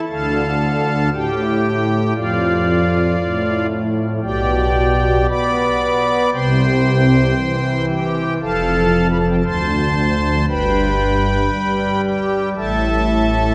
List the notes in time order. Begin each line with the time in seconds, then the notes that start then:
0.10 D2 D3 A4 F5 A5
1.13 A2 G4 G5
2.16 F2 F4 D5 F5
3.19 A2
4.22 B1 B2 G4 D5 G5
5.29 B3 D5 B5 D6
6.33 C2 C3 C5 G5 C6
7.37 E3
7.89 G4 G5
8.41 F1 F2 A4 F5 A5
9.10 B5
9.18 A5
9.29 G5
9.36 A5
9.45 D2 C5 A5 C6
10.48 G1 G2 B4 G5 B5
11.53 G3
12.04 G4 G5
12.56 A1 A2 A4 E5 A5